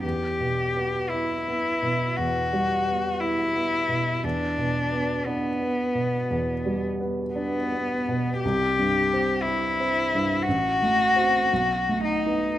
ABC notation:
X:1
M:4/4
L:1/8
Q:1/4=58
K:Em
V:1 name="Cello"
G2 E2 F2 E2 | D2 B,3 z B,2 | G2 E2 F3 ^D |]
V:2 name="Grand piano"
(3E,, B,, B, (3E B, B,, (3E,, G, B, (3E B, B,, | (3E,, B,, B, (3D B, B,, (3E,, G, B, (3D B, B,, | (3C,, G,, C (3E C G,, (3A,,, A, [CF] (3B,,, A, [B,^D] |]